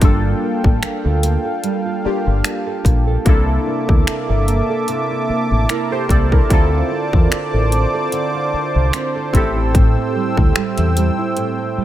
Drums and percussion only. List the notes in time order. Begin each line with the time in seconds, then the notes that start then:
0.02 kick, closed hi-hat
0.64 kick
0.83 finger snap, closed hi-hat
1.23 closed hi-hat
1.64 closed hi-hat
2.44 finger snap, closed hi-hat
2.85 kick, closed hi-hat
3.26 kick, closed hi-hat
3.89 kick
4.07 finger snap, closed hi-hat
4.48 closed hi-hat
4.88 closed hi-hat
5.69 finger snap, closed hi-hat
6.09 kick, closed hi-hat
6.32 kick
6.50 kick, closed hi-hat
7.13 kick
7.32 finger snap, closed hi-hat
7.72 closed hi-hat
8.12 closed hi-hat
8.93 finger snap, closed hi-hat
9.34 kick, closed hi-hat
9.75 kick, closed hi-hat
10.37 kick
10.55 finger snap, closed hi-hat
10.78 closed hi-hat
10.97 closed hi-hat
11.37 closed hi-hat